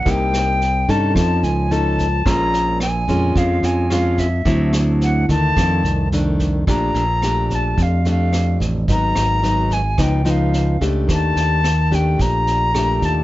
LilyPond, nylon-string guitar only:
\new Staff \with { instrumentName = "Nylon-string guitar" } { \time 4/4 \key f \phrygian \tempo 4 = 109 << { <bes ees' g'>4 r8 <des' ees' a'>4. <cis' ees' a'>8 r8 | <aes des' f'>4 r8 <aes des' f'>4. <aes des' f'>8 r8 | <fis c' e'>4. <ees a d'>4. <ees a d'>4 | \key bes \major <a d' g'>8 r8 <a d' g'>4. <a d' g'>4. |
<ges ces' ees'>4 <ges ces' ees'>8 r8 <f ces' ees'>8 <f ces' ees'>4 <a d' g'>8~ | <a d' g'>4 r8 <a d' g'>4. <a d' g'>4 | } \\ { c2 f2 | bes,2 f2 | d2 f,2 | bes,2 f,2 |
aes,2 des2 | ees2 bes,2 | } >> }